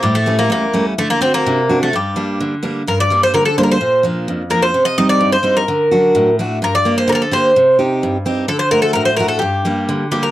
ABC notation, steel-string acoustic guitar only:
X:1
M:2/4
L:1/8
Q:1/4=128
K:Gm
V:1 name="Steel-string acoustic guitar"
A,, [G,A,^C] =E,, [G,A,C] | D, [CD^F] C, [CDF] | G,, [G,B,D] D, [G,B,D] | G,, [G,B,D] D, [G,B,D] |
B,, [F,B,D] F,, [F,B,D] | C, [G,CE] G,, [G,CE] | D, [^F,D^F] A,, [A,DF] | G,, [B,DG] D, [B,DG] |
C, [CEG] G,, [CEG] | D, [A,D^F] A,, [A,DF] | G,, [G,B,D] D, [G,B,D] |]